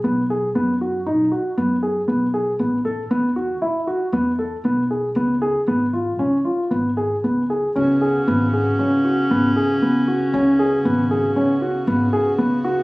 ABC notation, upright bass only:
X:1
M:5/4
L:1/8
Q:1/4=117
K:Cblyd
V:1 name="Upright bass" clef=bass
C,,2 G,,2 C,, z G,,2 C,,2 | =A,,,2 =E,,2 A,,, z E,,2 =B,,,2 | D,,2 A,,,2 D,, z A,,,2 D,,2 | D,,2 A,,,2 D,,2 A,,, z D,,2 |
D,,2 A,,,2 D,,2 A,,, z D,,2 |]